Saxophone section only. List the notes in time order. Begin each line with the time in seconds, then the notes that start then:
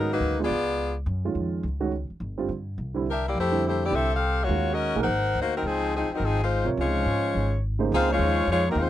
0.12 F#3 A#3 D#4 B4
0.43 B3 F4 G#4 D5
3.10 D4 G4 A#4 E5
3.27 A#3 E4 G4 D5
3.39 A3 E4 G4 C5
3.67 A3 E4 G4 C5
3.85 B3 E4 G4 D5
3.94 C4 G4 A4 E5
4.14 C4 G4 A4 F5
4.43 A#3 F4 F#4 C#5
4.72 C#4 F#4 A#4 D#5
5.02 D#4 A#4 C5 F#5
5.40 A#3 D#4 F#4 C5
5.56 F#3 C4 D#4 A#4
5.65 F3 C4 D#4 G#4
5.95 F3 C4 D#4 G#4
6.13 F#3 C4 D#4 A#4
6.24 F3 C4 D#4 G#4
6.43 G#3 D#4 F4 C5
6.80 G#3 D#4 F4 C#5
7.94 D#4 G#4 C5 F5
8.13 G#3 D#4 F4 C#5
8.50 G#3 D#4 F4 C#5
8.70 F#3 C4 D#4 A#4
8.79 G#3 D#4 F4 C5